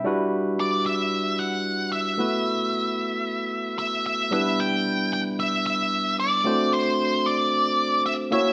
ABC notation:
X:1
M:4/4
L:1/8
Q:"Swing 16ths" 1/4=112
K:Em
V:1 name="Lead electric guitar"
z2 d e2 f2 e- | e6 e e | e g2 g e e2 d- | d c2 d3 e e |]
V:2 name="Tine electric piano"
[G,DEFB]8 | [A,B,EFB]8 | [G,B,DEB]8 | [A,CDFc]6- [A,CDFc] [^A,^CEF^c] |]